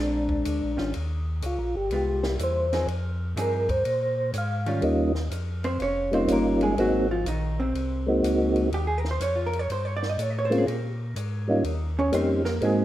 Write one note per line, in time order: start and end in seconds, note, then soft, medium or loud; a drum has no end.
0.00 0.44 A#1 medium
0.00 0.72 G#3 medium
0.00 0.72 C4 medium
0.00 0.72 D4 medium
0.00 0.91 D4 medium
0.29 kick medium
0.45 0.61 D2 medium
0.45 hi-hat pedal medium
0.45 ride medium
0.63 0.78 A#1 medium
0.77 0.93 G#1 medium
0.77 0.92 D#3 medium
0.77 0.92 G3 medium
0.77 0.92 C#4 medium
0.77 0.93 F4 medium
0.77 snare soft
0.94 1.42 D#2 medium
0.94 ride medium
1.42 1.58 C#2 medium
1.42 1.75 F4 medium
1.42 hi-hat pedal medium
1.42 ride medium
1.59 1.75 A#1 medium
1.75 1.90 G1 medium
1.75 2.37 G4 medium
1.91 2.38 C2 medium
1.91 2.21 G#3 medium
1.91 2.21 B3 medium
1.91 2.21 F4 medium
1.91 ride medium
2.23 2.66 G3 medium
2.23 2.66 A#3 medium
2.23 2.66 E4 medium
2.23 snare medium
2.39 2.86 E2 medium
2.39 hi-hat pedal medium
2.39 ride medium
2.43 2.87 C5 medium
2.73 2.87 F3 medium
2.73 2.87 C4 medium
2.73 2.87 D#4 medium
2.73 2.88 G#4 medium
2.73 snare soft
2.73 ride soft
2.87 3.35 F2 medium
2.87 ride medium
3.36 3.84 G2 medium
3.36 3.66 F3 medium
3.36 3.66 C4 medium
3.36 3.66 D#4 medium
3.36 3.67 G#4 medium
3.36 hi-hat pedal medium
3.36 ride medium
3.41 3.71 A#4 medium
3.69 4.31 C5 medium
3.69 kick medium
3.69 ride medium
3.85 4.33 A#2 medium
3.85 ride medium
4.34 4.81 G#2 medium
4.34 hi-hat pedal medium
4.34 ride medium
4.38 4.74 F5 medium
4.66 4.81 D#3 medium
4.66 4.81 G3 medium
4.66 4.82 C#4 medium
4.66 4.82 F4 medium
4.66 ride soft
4.82 5.30 D#2 medium
4.82 5.11 G3 medium
4.82 5.12 A#3 medium
4.82 5.12 C#4 medium
4.82 5.12 D#4 medium
4.82 5.13 F4 medium
4.82 ride medium
5.15 snare soft
5.31 5.78 F2 medium
5.31 hi-hat pedal medium
5.31 ride medium
5.64 5.80 C4 medium
5.64 5.80 C5 medium
5.64 ride soft
5.80 6.27 F1 medium
5.80 6.13 C#4 medium
5.80 6.13 C#5 loud
5.80 ride medium
6.11 6.74 G3 medium
6.11 6.74 A#3 medium
6.11 6.29 C4 medium
6.11 6.75 C#4 medium
6.11 6.75 D#4 medium
6.11 6.75 F4 medium
6.11 6.29 C5 medium
6.11 ride soft
6.28 6.76 G1 medium
6.28 hi-hat pedal medium
6.28 ride medium
6.32 6.62 A#3 medium
6.32 6.62 A#4 medium
6.61 6.78 G#3 medium
6.61 6.78 G#4 medium
6.61 ride soft
6.77 7.24 G#1 medium
6.77 7.10 F#3 medium
6.77 7.07 G#3 medium
6.77 7.07 A#3 medium
6.77 7.07 C4 medium
6.77 7.07 D#4 medium
6.77 7.10 F#4 medium
6.77 7.08 F#4 medium
6.77 ride medium
7.11 7.27 F3 medium
7.11 7.26 F4 medium
7.25 7.73 A#1 medium
7.25 7.59 D#3 medium
7.25 7.59 D#4 medium
7.25 hi-hat pedal medium
7.25 ride medium
7.60 8.21 C3 medium
7.60 8.20 C4 medium
7.74 8.22 C2 medium
7.74 ride medium
8.07 8.69 G#3 medium
8.07 8.69 A#3 medium
8.07 8.69 C4 medium
8.07 8.70 D#4 medium
8.07 8.70 F#4 medium
8.23 8.71 C#2 medium
8.23 hi-hat pedal medium
8.23 ride medium
8.56 ride soft
8.72 9.19 D#2 medium
8.72 8.87 G4 medium
8.72 ride medium
8.87 8.98 G#4 medium
8.98 9.09 A#4 medium
9.05 snare soft
9.11 9.20 C5 medium
9.20 9.68 F2 medium
9.20 9.37 C#5 medium
9.20 hi-hat pedal medium
9.20 ride medium
9.36 9.52 F4 medium
9.46 9.59 A#4 medium
9.53 ride soft
9.59 9.68 C#5 medium
9.70 10.17 G2 medium
9.70 9.85 C5 medium
9.70 ride medium
9.85 9.96 C#5 medium
9.97 10.07 D5 loud
10.03 snare soft
10.10 10.21 D#5 medium
10.18 10.66 A2 loud
10.18 10.30 C#5 medium
10.18 hi-hat pedal medium
10.18 ride medium
10.30 10.35 D#5 medium
10.39 10.52 C#5 medium
10.45 10.56 C5 medium
10.50 10.65 G#3 medium
10.50 10.66 A#3 medium
10.50 10.66 C4 medium
10.50 10.66 C#4 medium
10.50 10.66 F4 medium
10.50 ride medium
10.58 10.70 G#4 medium
10.67 11.15 A#2 medium
10.67 10.89 G4 medium
10.67 ride medium
11.16 11.63 G#2 medium
11.16 hi-hat pedal medium
11.16 ride medium
11.48 11.63 G3 medium
11.48 11.63 A#3 medium
11.48 11.63 C#4 medium
11.48 11.64 D#4 medium
11.48 11.64 F4 medium
11.64 12.12 D#2 medium
11.64 ride medium
11.99 12.14 C#4 medium
11.99 12.14 C#5 medium
12.12 12.60 F2 medium
12.12 12.42 G3 medium
12.12 12.42 A#3 soft
12.12 12.46 C4 medium
12.12 12.42 C#4 soft
12.12 12.43 D#4 soft
12.12 12.43 G4 medium
12.12 12.45 C5 medium
12.12 hi-hat pedal medium
12.12 ride medium
12.45 12.62 A#3 medium
12.45 12.61 A#4 medium
12.45 snare medium
12.61 12.85 G#2 medium
12.61 12.85 G#3 medium
12.61 12.85 A#3 medium
12.61 12.85 C4 medium
12.61 12.85 D#4 medium
12.61 12.85 F#4 medium
12.61 12.85 G#4 medium
12.61 ride medium